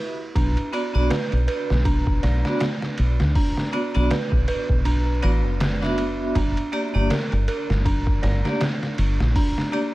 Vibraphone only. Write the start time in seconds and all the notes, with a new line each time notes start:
0.73 B3 D4 F#4 D5
0.94 B3 D4 F#4 D5
2.44 B3 D4 F#4 D5
3.72 B3 D4 F#4 D5
3.94 B3 D4 F#4 D5
5.22 B3 D4 F#4 D5
5.82 B3 D4 F#4 E5
6.72 A#3 D4 G4 D5
6.94 A#3 D4 G4 D5
8.44 A#3 D4 G4 D5
9.72 A#3 D4 G4 D5